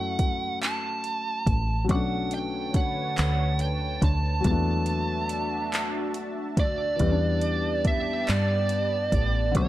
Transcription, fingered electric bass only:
0, 0, Header, 1, 2, 480
1, 0, Start_track
1, 0, Tempo, 851064
1, 1067, Time_signature, 6, 3, 24, 8
1, 5462, End_track
2, 0, Start_track
2, 0, Title_t, "Fingered electric bass"
2, 0, Program_c, 0, 33
2, 0, Note_on_c, 0, 42, 103
2, 807, Note_off_c, 0, 42, 0
2, 831, Note_on_c, 0, 33, 93
2, 1074, Note_off_c, 0, 33, 0
2, 1074, Note_on_c, 0, 35, 98
2, 1768, Note_off_c, 0, 35, 0
2, 1799, Note_on_c, 0, 38, 103
2, 2251, Note_off_c, 0, 38, 0
2, 2272, Note_on_c, 0, 38, 102
2, 2487, Note_off_c, 0, 38, 0
2, 2513, Note_on_c, 0, 40, 101
2, 3711, Note_off_c, 0, 40, 0
2, 3711, Note_on_c, 0, 38, 108
2, 3927, Note_off_c, 0, 38, 0
2, 3952, Note_on_c, 0, 40, 98
2, 4647, Note_off_c, 0, 40, 0
2, 4677, Note_on_c, 0, 43, 85
2, 5129, Note_off_c, 0, 43, 0
2, 5151, Note_on_c, 0, 33, 91
2, 5393, Note_off_c, 0, 33, 0
2, 5393, Note_on_c, 0, 35, 100
2, 5462, Note_off_c, 0, 35, 0
2, 5462, End_track
0, 0, End_of_file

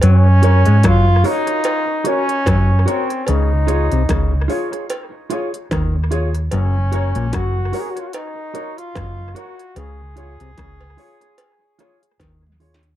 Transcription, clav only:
0, 0, Header, 1, 2, 480
1, 0, Start_track
1, 0, Tempo, 810701
1, 18, Time_signature, 4, 2, 24, 8
1, 7674, End_track
2, 0, Start_track
2, 0, Title_t, "Clav"
2, 0, Program_c, 0, 7
2, 19, Note_on_c, 0, 54, 78
2, 163, Note_off_c, 0, 54, 0
2, 392, Note_on_c, 0, 56, 72
2, 455, Note_off_c, 0, 56, 0
2, 498, Note_on_c, 0, 54, 78
2, 642, Note_off_c, 0, 54, 0
2, 1462, Note_on_c, 0, 54, 79
2, 1605, Note_off_c, 0, 54, 0
2, 1940, Note_on_c, 0, 49, 77
2, 2084, Note_off_c, 0, 49, 0
2, 2322, Note_on_c, 0, 48, 74
2, 2382, Note_off_c, 0, 48, 0
2, 2422, Note_on_c, 0, 49, 76
2, 2565, Note_off_c, 0, 49, 0
2, 3384, Note_on_c, 0, 51, 78
2, 3527, Note_off_c, 0, 51, 0
2, 3862, Note_on_c, 0, 42, 89
2, 4005, Note_off_c, 0, 42, 0
2, 4238, Note_on_c, 0, 46, 79
2, 4299, Note_off_c, 0, 46, 0
2, 4343, Note_on_c, 0, 42, 75
2, 4486, Note_off_c, 0, 42, 0
2, 5304, Note_on_c, 0, 42, 75
2, 5447, Note_off_c, 0, 42, 0
2, 5784, Note_on_c, 0, 49, 80
2, 5927, Note_off_c, 0, 49, 0
2, 6161, Note_on_c, 0, 48, 77
2, 6222, Note_off_c, 0, 48, 0
2, 6263, Note_on_c, 0, 49, 80
2, 6406, Note_off_c, 0, 49, 0
2, 7221, Note_on_c, 0, 51, 73
2, 7365, Note_off_c, 0, 51, 0
2, 7674, End_track
0, 0, End_of_file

